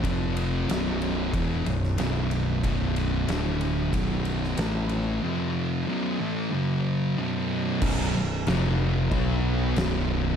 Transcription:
<<
  \new Staff \with { instrumentName = "Distorted electric guitar" } { \clef bass \time 4/4 \key b \phrygian \tempo 4 = 92 <f, c f>4 <b,, fis, b,>4 <e, b, e>8 <b,, fis,>8 <b,, fis, b,>4 | <b,, fis, b,>4 <d, a, d>4 <b,, fis, b,>4 <a, e a>4 | <f, c f>4 <b,, fis, b,>8 <a, e a>8 <fis, cis fis>4 <b,, fis, b,>4 | <b,, fis, b,>8 <b,, fis,>8 <f, c f>4 <b, fis b>4 <b,, fis, b,>4 | }
  \new Staff \with { instrumentName = "Distorted electric guitar" } { \clef bass \time 4/4 \key b \phrygian <f, c f>4 <b,, fis, b,>4 <e, b, e>8 <b,, fis,>8 <b,, fis, b,>4 | <b,, fis, b,>4 <d, a, d>4 <b,, fis, b,>4 <a, e a>4 | <f, c f>4 <b,, fis, b,>8 <a, e a>8 <fis, cis fis>4 <b,, fis, b,>4 | <b,, fis, b,>8 <b,, fis,>8 <f, c f>4 <b, fis b>4 <b,, fis, b,>4 | }
  \new Staff \with { instrumentName = "Picked electric bass" } { \clef bass \time 4/4 \key b \phrygian f,,4 b,,,4 e,,8 b,,,8 b,,,4 | b,,,4 d,,4 b,,,4 a,,4 | r1 | b,,,8 b,,,8 f,,4 b,,4 b,,,4 | }
  \new DrumStaff \with { instrumentName = "Drums" } \drummode { \time 4/4 <bd cymr>8 cymr8 <cymr sn>8 cymr8 <bd cymr>8 cymr16 sn16 <cymr sn>8 cymr8 | <bd cymr>8 cymr8 <cymr sn>8 cymr8 <bd cymr>8 cymr16 sn16 <cymr sn>8 cymr8 | r4 r4 r4 r4 | <cymc bd>4 <cymc sn>4 <cymc bd>4 <cymc sn>4 | }
>>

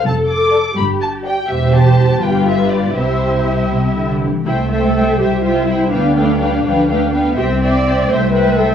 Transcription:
<<
  \new Staff \with { instrumentName = "Violin section" } { \time 6/8 \key c \major \tempo 4. = 83 a''8 d'''4 b''8 a''8 g''8 | e''8 a''4 g''8 e''8 d''8 | c''4. r4. | g''8 g''8 g''8 g''8 g''8 g''8 |
g''8 g''8 g''8 g''8 g''8 g''8 | g''8 g''8 g''8 g''8 g''8 g''8 | }
  \new Staff \with { instrumentName = "Violin section" } { \time 6/8 \key c \major r4 <a' d''>8 r4 <g' d''>8 | <g' c''>4. <f' b'>4. | <e' g'>2~ <e' g'>8 r8 | <c'' e''>8 <c'' e''>8 <c'' e''>8 <c'' e''>8 <c'' e''>8 <c'' e''>8 |
<b' f''>8 <b' f''>8 <b' f''>8 <b' f''>8 <b' f''>8 <b' f''>8 | <c'' e''>8 <c'' e''>8 <c'' e''>8 <c'' e''>8 <c'' e''>8 <c'' e''>8 | }
  \new Staff \with { instrumentName = "Viola section" } { \time 6/8 \key c \major a'4. g'4. | g'2. | e''2~ e''16 r8. | e'8 a'4 g'8 f'8 e'8 |
d'2~ d'8 r8 | g'8 d''4 c''8 b'8 a'8 | }
  \new Staff \with { instrumentName = "Cello section" } { \clef bass \time 6/8 \key c \major f,4. g,4. | e,4. g,4. | c4. c8 d8 e8 | a4. g4. |
b8 a8 g8 f8 a8 b8 | c'4. a4. | }
  \new Staff \with { instrumentName = "Double bass section" } { \clef bass \time 6/8 \key c \major f,,4. g,,4. | e,,4. g,,4. | c,2~ c,8 r8 | c,4. c,4. |
d,4. d,4. | c,4. c,4. | }
>>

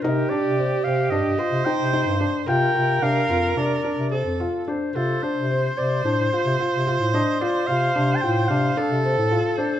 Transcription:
<<
  \new Staff \with { instrumentName = "Clarinet" } { \time 9/8 \key d \phrygian \tempo 4. = 74 bes'8 d''4 f''8 ees''4 g''4 r8 | g''4 f''4 d''4~ d''32 r8. r32 c''8 | a'8 c''4 d''8 c''4 r4 ees''8 | d''8 f''8.~ f''32 a''32 g''8 f''4 r4 c''8 | }
  \new Staff \with { instrumentName = "Viola" } { \time 9/8 \key d \phrygian g'2~ g'8 c''2 | bes'2. a'4 r8 | c''1~ c''8~ | c''2~ c''8 a'2 | }
  \new Staff \with { instrumentName = "Felt piano" } { \time 9/8 \key d \phrygian ees'8 d'8 c'8 c'8 d'8 f'8 ees'8 ees'8 d'8 | f'8 f'8 d'8 f'8 d'8 d'8 c'8 f'8 d'8 | f'8 d'8 c'8 c'8 d'8 f'8 f'8 f'8 d'8 | f'8 f'8 d'8 f'8 d'8 d'8 c'8 f'8 d'8 | }
  \new Staff \with { instrumentName = "Bass clarinet" } { \clef bass \time 9/8 \key d \phrygian c8 r16 c8. c8 g,16 g,16 r16 c16 r16 c8 g,8 r16 | c8 c8 c8 f,8 c8 r16 c8 f,8 r8. | c8 r16 c8. c8 a,16 a,16 r16 c16 r16 c8 a,8 r16 | r8 c8 c8 a,8 c8 r16 c8 a,8 r8. | }
>>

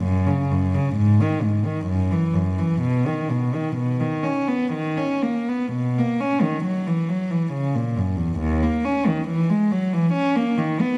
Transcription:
\new Staff \with { instrumentName = "Cello" } { \clef bass \time 3/4 \key b \major \tempo 4 = 65 fis,16 cis16 fis,16 cis16 gis,16 dis16 gis,16 dis16 fis,16 e16 fis,16 e16 | b,16 dis16 b,16 dis16 b,16 dis16 cis'16 b16 dis16 cis'16 ais16 b16 | b,16 ais16 cis'16 dis16 fis16 e16 fis16 e16 cis16 ais,16 fis,16 e,16 | dis,16 ais16 cis'16 dis16 e16 gis16 fis16 e16 cis'16 ais16 dis16 b16 | }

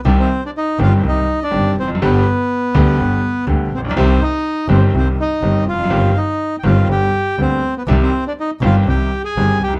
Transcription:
<<
  \new Staff \with { instrumentName = "Bandoneon" } { \time 4/4 \key c \minor \tempo 4 = 122 << { d''16 c''8 d''16 ees''8 f''8 ees''8. d''8. c''8 | b'2. r8 c''16 d''16 | c''8 ees''4 c''8 c''8 ees''4 f''8~ | f''8 ees''8.~ ees''32 g''32 f''8 g''4 c''8. b'16 |
d''16 c''8 d''16 ees''8 f''8 g''8. aes''8. g''8 | } \\ { d'16 c'8 d'16 ees'8 f'8 ees'8. d'8. c'8 | b2. r8 c'16 d'16 | c'8 ees'4 c'8 c'8 ees'4 f'8~ | f'8 ees'4 f'8 g'4 c'8. b16 |
d'16 c'8 d'16 ees'8 f'8 g'8. aes'8. g'8 | } >> }
  \new Staff \with { instrumentName = "Grand piano" } { \clef bass \time 4/4 \key c \minor <c, c ees g c' g'>8 r4 <g,, g, ees g c' g'>8 <c, c ees g c' g'>8 r8 <g,, g, ees g c' g'>8 r32 e,32 f,32 fis,32 | <g,, g, d g b g'>8 r4 <d, d g b g'>8 <g,, g, d g b g'>8 r8 <d, d g b g'>8 r32 a,,32 bes,,32 b,,32 | <c, c ees g c' g'>8 r4 <g,, g, ees g c' g'>8 <c, c ees g c' g'>8 r8 <g,, g, ees g c' g'>8 r32 e,32 f,32 fis,32 | <g,, g, ees g c' g'>8 r4 <g,, g, ees g c' g'>8 <g,, g, d g b g'>8 r8 <d, d g b g'>8 r8 |
<c, c ees g c' g'>8 r4 <g,, g, ees g c' g'>8 <c, c ees g c' g'>8 r8 <g,, g, ees g c' g'>8 r32 b,,32 c,32 r32 | }
  \new Staff \with { instrumentName = "Double bass" } { \clef bass \time 4/4 \key c \minor c,8 r4 g,,8 c,8 r8 g,,8 f,,8 | g,,8 r4 d,8 g,,8 r8 d,8 bes,,8 | c,8 r4 g,,8 c,8 r8 g,,8 f,,8 | g,,8 r4 g,,8 g,,8 r8 d,8 r8 |
c,8 r4 g,,8 c,8 r8 g,,8 c,8 | }
>>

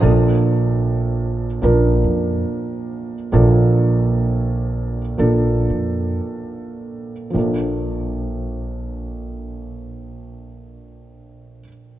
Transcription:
<<
  \new Staff \with { instrumentName = "Felt piano" } { \time 4/4 \key bes \major \tempo 4 = 61 <f bes d' a'>2 <f bes d' bes'>2 | <f bes d' a'>2 <f bes d' a'>2 | <f bes d' a'>1 | }
  \new Staff \with { instrumentName = "Felt piano" } { \clef bass \time 4/4 \key bes \major <bes,, bes,>1 | <bes,, bes,>1 | bes,,1 | }
  \new Staff \with { instrumentName = "Upright bass" } { \clef bass \time 4/4 \key bes \major bes,,2 bes,,8 f,8 r4 | bes,,2 bes,,8 f,8 r4 | bes,,1 | }
>>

